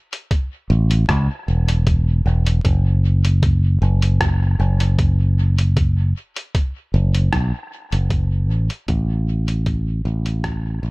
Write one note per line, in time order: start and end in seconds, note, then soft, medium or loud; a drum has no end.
0.13 closed hi-hat medium
0.31 kick loud
0.31 closed hi-hat soft
0.70 1.05 A1 medium
0.91 closed hi-hat medium
1.09 1.27 C#2 loud
1.09 kick loud
1.09 cross-stick medium
1.09 closed hi-hat soft
1.48 2.22 E1 medium
1.68 closed hi-hat medium
1.87 kick loud
1.87 closed hi-hat soft
2.26 2.60 E1 medium
2.47 closed hi-hat medium
2.65 3.78 F#1 loud
2.65 kick loud
2.65 closed hi-hat soft
3.25 closed hi-hat medium
3.43 kick loud
3.43 closed hi-hat soft
3.82 4.56 F#1 medium
4.02 closed hi-hat soft
4.21 kick loud
4.21 cross-stick medium
4.21 closed hi-hat soft
4.60 6.12 F#1 medium
4.80 closed hi-hat medium
4.99 kick loud
4.99 closed hi-hat soft
5.58 closed hi-hat soft
5.77 kick loud
5.77 closed hi-hat soft
6.36 closed hi-hat medium
6.55 kick loud
6.55 closed hi-hat soft
6.94 7.28 F#1 medium
7.15 closed hi-hat medium
7.33 7.51 B1 loud
7.33 kick loud
7.33 cross-stick medium
7.33 closed hi-hat soft
7.92 8.50 F#1 medium
7.92 closed hi-hat soft
8.10 kick loud
8.10 closed hi-hat soft
8.50 8.68 A1 medium
8.70 closed hi-hat medium
8.88 10.02 A1 loud
8.88 kick loud
8.88 closed hi-hat soft
9.48 closed hi-hat medium
9.66 kick loud
9.66 closed hi-hat soft
10.05 10.80 A1 loud
10.26 closed hi-hat medium
10.44 kick loud
10.44 cross-stick medium
10.44 closed hi-hat soft
10.83 10.91 A1 medium